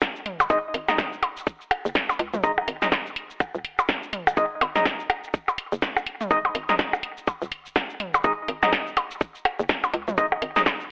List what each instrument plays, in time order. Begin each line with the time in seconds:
Already playing: fm bass G#1
0.02 kick, snare, percussion blips, shaker
0.16 shaker
0.26 closed hi-hat, mid tom
0.40 percussion blips, shaker
0.50 fm bass G#1, synth stab G#3 D#4 D#5, kick, shaker
0.74 fm bass G#1, closed hi-hat
0.88 synth stab G#3 D#4 D#5, snare, mid tom, percussion blips, shaker
0.98 kick, snare, shaker
1.13 shaker
1.23 closed hi-hat, percussion blips
1.37 shaker
1.47 kick, shaker
1.61 shaker
1.71 closed hi-hat, percussion blips
1.85 fm bass F#1, shaker
1.95 kick, snare, shaker
2.09 percussion blips, shaker
2.19 fm bass C#2, closed hi-hat
2.34 fm bass D#1, mid tom, shaker
2.44 fm bass G#1, synth stab G#3 D#4 D#5, kick, shaker
2.58 percussion blips
2.68 fm bass G#1, closed hi-hat
2.82 synth stab G#3 D#4 D#5, snare, mid tom, shaker
2.92 kick, snare, percussion blips, shaker
3.06 shaker
3.16 closed hi-hat
3.30 shaker
3.40 kick, percussion blips, shaker
3.55 fm bass D#1, shaker
3.65 fm bass G#1, closed hi-hat
3.79 percussion blips, shaker
3.89 kick, snare, shaker
4.03 shaker
4.13 closed hi-hat, mid tom
4.27 percussion blips, shaker
4.37 fm bass G#1, synth stab G#3 D#4 D#5, kick, shaker
4.61 fm bass G#1, closed hi-hat, percussion blips
4.75 synth stab G#3 D#4 D#5, snare, mid tom, shaker
4.85 kick, snare, shaker
5.00 shaker
5.10 closed hi-hat, percussion blips
5.24 shaker
5.34 kick, shaker
5.48 percussion blips, shaker
5.58 closed hi-hat
5.72 fm bass F#1, shaker
5.82 kick, snare, shaker
5.97 percussion blips, shaker
6.06 fm bass D#1, closed hi-hat
6.21 mid tom, shaker
6.31 fm bass G#1, synth stab G#3 D#4 D#5, kick, shaker
6.45 percussion blips
6.55 fm bass G#1, closed hi-hat
6.69 synth stab G#3 D#4 D#5, snare, mid tom, shaker
6.79 kick, snare, shaker
6.93 percussion blips, shaker
7.03 closed hi-hat
7.17 shaker
7.27 kick, percussion blips, shaker
7.42 fm bass D#1, shaker
7.52 fm bass G#1, closed hi-hat
7.66 shaker
7.76 kick, snare, percussion blips, shaker
7.90 shaker
8.00 closed hi-hat, mid tom
8.14 percussion blips, shaker
8.24 fm bass G#1, synth stab G#3 D#4 D#5, kick, shaker
8.48 fm bass G#1, closed hi-hat
8.63 synth stab G#3 D#4 D#5, snare, mid tom, percussion blips, shaker
8.73 kick, snare, shaker
8.87 shaker
8.97 closed hi-hat, percussion blips
9.11 shaker
9.21 kick, shaker
9.35 shaker
9.45 closed hi-hat, percussion blips
9.59 fm bass F#1, shaker
9.69 kick, snare, shaker
9.84 percussion blips, shaker
9.94 fm bass C#2, closed hi-hat
10.08 fm bass D#1, mid tom, shaker
10.18 fm bass G#1, synth stab G#3 D#4 D#5, kick, shaker
10.32 percussion blips
10.42 fm bass G#1, closed hi-hat
10.56 synth stab G#3 D#4 D#5, snare, mid tom, shaker
10.66 kick, snare, percussion blips, shaker
10.80 shaker